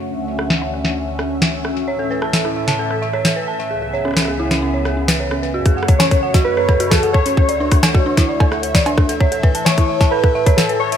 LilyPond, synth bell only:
\new Staff \with { instrumentName = "Synth bell" } { \time 4/4 \key fis \minor \tempo 4 = 131 r1 | cis''16 a'16 b'16 a''16 e''16 e'16 e''16 a''16 a'16 a'16 e''16 cis''16 a'16 b'16 a''16 e''16 | gis'16 gis'16 cis''16 cis'16 cis'16 gis'16 e'16 cis'16 cis'16 cis''16 gis'16 cis'16 b'16 cis''16 cis'16 b'16 | fis'16 gis'16 fis''16 cis''16 cis'16 cis''16 fis''16 fis'16 fis'16 cis''16 a'16 fis'16 gis'16 fis''16 cis''16 cis'16 |
a'16 d''16 d'16 d'16 a'16 fis'16 d'16 e'16 d''16 a'16 a'16 a'16 d''16 d'16 d'16 a'16 | cis''16 a'16 b'16 a''16 e''16 e'16 e''16 a''16 a'16 a'16 e''16 cis''16 a'16 b'16 a''16 e''16 | }